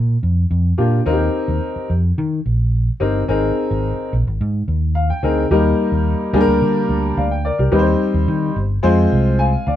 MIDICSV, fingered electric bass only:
0, 0, Header, 1, 3, 480
1, 0, Start_track
1, 0, Key_signature, -3, "major"
1, 0, Tempo, 555556
1, 917, Time_signature, 4, 2, 24, 8
1, 8433, End_track
2, 0, Start_track
2, 0, Title_t, "Fingered electric bass"
2, 0, Program_c, 0, 33
2, 0, Note_on_c, 0, 46, 92
2, 143, Note_off_c, 0, 46, 0
2, 198, Note_on_c, 0, 41, 82
2, 384, Note_off_c, 0, 41, 0
2, 437, Note_on_c, 0, 41, 91
2, 623, Note_off_c, 0, 41, 0
2, 677, Note_on_c, 0, 46, 77
2, 863, Note_off_c, 0, 46, 0
2, 919, Note_on_c, 0, 39, 97
2, 1104, Note_off_c, 0, 39, 0
2, 1279, Note_on_c, 0, 39, 85
2, 1372, Note_off_c, 0, 39, 0
2, 1640, Note_on_c, 0, 41, 80
2, 1825, Note_off_c, 0, 41, 0
2, 1884, Note_on_c, 0, 51, 95
2, 2068, Note_off_c, 0, 51, 0
2, 2122, Note_on_c, 0, 34, 83
2, 2493, Note_off_c, 0, 34, 0
2, 2596, Note_on_c, 0, 31, 76
2, 2783, Note_off_c, 0, 31, 0
2, 2839, Note_on_c, 0, 32, 104
2, 3025, Note_off_c, 0, 32, 0
2, 3204, Note_on_c, 0, 32, 85
2, 3388, Note_off_c, 0, 32, 0
2, 3567, Note_on_c, 0, 34, 92
2, 3657, Note_off_c, 0, 34, 0
2, 3691, Note_on_c, 0, 32, 79
2, 3780, Note_off_c, 0, 32, 0
2, 3808, Note_on_c, 0, 44, 100
2, 3990, Note_off_c, 0, 44, 0
2, 4042, Note_on_c, 0, 39, 90
2, 4413, Note_off_c, 0, 39, 0
2, 4518, Note_on_c, 0, 38, 84
2, 4704, Note_off_c, 0, 38, 0
2, 4757, Note_on_c, 0, 39, 91
2, 4944, Note_off_c, 0, 39, 0
2, 5114, Note_on_c, 0, 39, 86
2, 5302, Note_off_c, 0, 39, 0
2, 5472, Note_on_c, 0, 38, 100
2, 5567, Note_off_c, 0, 38, 0
2, 5596, Note_on_c, 0, 38, 89
2, 5690, Note_off_c, 0, 38, 0
2, 5716, Note_on_c, 0, 50, 112
2, 5903, Note_off_c, 0, 50, 0
2, 5953, Note_on_c, 0, 38, 89
2, 6141, Note_off_c, 0, 38, 0
2, 6197, Note_on_c, 0, 38, 95
2, 6476, Note_off_c, 0, 38, 0
2, 6558, Note_on_c, 0, 36, 94
2, 6651, Note_off_c, 0, 36, 0
2, 6673, Note_on_c, 0, 39, 106
2, 6860, Note_off_c, 0, 39, 0
2, 7034, Note_on_c, 0, 39, 95
2, 7128, Note_off_c, 0, 39, 0
2, 7154, Note_on_c, 0, 51, 104
2, 7341, Note_off_c, 0, 51, 0
2, 7398, Note_on_c, 0, 31, 94
2, 7583, Note_off_c, 0, 31, 0
2, 7637, Note_on_c, 0, 41, 105
2, 7822, Note_off_c, 0, 41, 0
2, 7877, Note_on_c, 0, 36, 90
2, 8249, Note_off_c, 0, 36, 0
2, 8355, Note_on_c, 0, 38, 86
2, 8433, Note_off_c, 0, 38, 0
2, 8433, End_track
3, 0, Start_track
3, 0, Title_t, "Muted fingered electric bass strokes"
3, 1521, Note_on_c, 9, 29, 47
3, 1607, Note_off_c, 9, 29, 0
3, 8433, End_track
0, 0, End_of_file